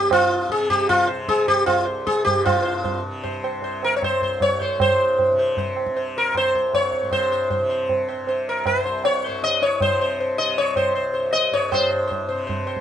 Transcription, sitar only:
Already playing: G4
0.13 F4
0.52 G#4
0.70 G4
0.89 F4
1.07 C5
1.29 G#4
1.48 G4
1.66 F4
1.85 C5
2.07 G#4
2.25 G4
2.44 F4 C5
2.62 C5
2.84 C5
3.23 C5
3.44 C5
3.64 C5
3.84 A#4
3.96 C#5
4.04 C5
4.23 C5
4.42 C#5
4.61 C5
4.81 C5
5.39 C5
5.58 C5
5.96 C5
6.18 A#4
6.37 C5
6.55 C5
6.75 C#5
7.13 C5
7.32 C5
7.50 C5
7.70 C5
8.09 C5
8.29 C5
8.49 A#4
8.67 C5
8.86 C5
9.05 C#5
9.26 C5
9.44 D#5
9.63 C#5
9.82 C5
10.01 C5
10.20 C5
10.38 D#5
10.58 C#5
10.77 C5
10.95 C5
11.14 C5
11.33 D#5
11.53 C#5
11.72 C5
11.91 C5
12.07 C5
12.29 C5
12.47 C5
12.67 C5

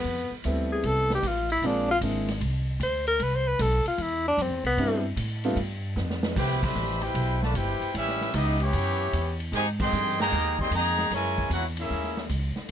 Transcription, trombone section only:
6.37 B3 E4 G4
6.65 B2 E3 G3
7.03 B2 E4 G4
7.42 A3
7.54 B2 E4 G4
7.94 G3 C#4 E4
8.34 D#4
8.61 E3 C#4 G4
9.52 C3 D#3 G#3
9.80 D#3 G#3 C4
10.19 D#3 G#3 A#3
10.60 D#3 G3 C4
10.72 D#3 G#3 A#3
11.12 C#3 E3 G#3
11.52 A#3 C#4 F#4
11.79 A#3 C#4 E4

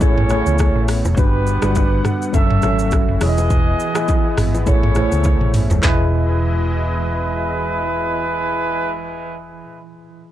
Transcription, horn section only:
0.01 C#4 A4 C#5
1.17 B3 G4 B4
2.34 A4 C#5 E5
3.21 G#4 B4 D#5
4.67 C#4 A4 C#5
5.83 G#3 E4 B4

